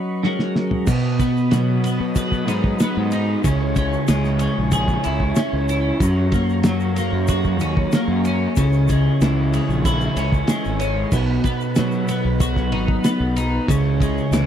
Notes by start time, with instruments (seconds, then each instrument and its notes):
Already playing: clean electric guitar F#3 C#4 D#4 B4, tonewheel organ F#4 D#5 B5 C#6
0.23 clean electric guitar F#3 G#3 C#4 F#4 A#4, tonewheel organ G#4 F#5 A#5, snare
0.39 snare
0.56 snare
0.71 floor tom
0.87 clean electric guitar B2, fingered electric bass B2, tonewheel organ F#4 D#5 B5 D#6, kick, crash, shaker
1.19 clean electric guitar B3, kick, ride, shaker
1.37 shaker
1.51 fingered electric bass B2, clean electric guitar F#3, snare, ride, shaker
1.84 clean electric guitar B3, ride, shaker
2.00 fingered electric bass B2
2.16 clean electric guitar B4, kick, ride, shaker
2.32 kick, shaker
2.48 fingered electric bass G#2, clean electric guitar D#4, ride, shaker
2.64 kick
2.80 clean electric guitar B3, snare, ride, shaker
2.97 fingered electric bass G#2
3.11 clean electric guitar D#4, ride, shaker
3.44 fingered electric bass C#2, clean electric guitar C#3, tonewheel organ E4 C#5 G#5 C#6, kick, ride, shaker
3.76 clean electric guitar C#4, kick, ride, shaker
3.93 shaker
4.08 fingered electric bass C#2, clean electric guitar G#3, snare, ride, shaker
4.24 snare, shaker
4.39 clean electric guitar C#4, ride, shaker
4.58 fingered electric bass A#1
4.72 clean electric guitar G#4, kick, ride, shaker
4.88 kick, shaker
5.04 fingered electric bass C#2, clean electric guitar E4, ride, shaker
5.20 kick
5.36 clean electric guitar C#4, snare, ride, shaker
5.53 fingered electric bass C#2
5.69 clean electric guitar E4, ride, shaker
6.00 fingered electric bass F#2, clean electric guitar F#2, tonewheel organ F#4 A#5, kick, ride, shaker
6.32 clean electric guitar A#3, kick, ride, shaker
6.49 shaker
6.63 fingered electric bass F#3, clean electric guitar F#3, snare, ride, shaker
6.80 shaker
6.96 clean electric guitar A#3, ride, shaker
7.12 fingered electric bass F#2
7.28 clean electric guitar F#4, kick, ride, shaker
7.44 kick, shaker
7.59 fingered electric bass D#2, clean electric guitar C#4, ride, shaker
7.77 kick
7.92 clean electric guitar A#3, snare, ride, shaker
8.08 fingered electric bass F#2
8.25 clean electric guitar C#4, ride, shaker
8.56 fingered electric bass C#2, clean electric guitar C#3, tonewheel organ E4 G#5, kick, ride, shaker
8.73 shaker
8.88 clean electric guitar G#3, kick, ride, shaker
9.21 fingered electric bass C#2, clean electric guitar E3, snare, ride, shaker
9.53 clean electric guitar G#3, ride, shaker
9.69 fingered electric bass A#1, shaker
9.85 clean electric guitar E4, kick, ride, shaker
10.01 shaker
10.17 fingered electric bass C#2, clean electric guitar C#4, ride, shaker
10.32 kick, shaker
10.47 clean electric guitar G#3, snare, ride, shaker
10.65 fingered electric bass G#1, shaker
10.80 clean electric guitar C#4, ride, shaker
11.12 fingered electric bass B1, clean electric guitar B2, tonewheel organ D#4 B4 F#5 B5, kick, crash, shaker
11.44 clean electric guitar B3, kick, ride, shaker
11.61 shaker
11.76 fingered electric bass B2, clean electric guitar F#3, snare, ride, shaker
11.91 shaker
12.08 clean electric guitar B3, ride, shaker
12.25 fingered electric bass B1
12.40 clean electric guitar F#4, kick, ride, shaker
12.56 kick, snare, shaker
12.72 fingered electric bass G#1, clean electric guitar D#4, ride
12.88 kick
13.04 clean electric guitar B3, snare, ride, shaker
13.20 fingered electric bass B1
13.36 clean electric guitar D#4, ride, shaker
13.68 fingered electric bass C#2, clean electric guitar C#3, tonewheel organ E4 C#5 G#5 C#6, kick, ride, shaker
14.00 clean electric guitar G#3, kick, ride, shaker
14.18 shaker
14.31 fingered electric bass C#2, clean electric guitar E3, snare, ride, shaker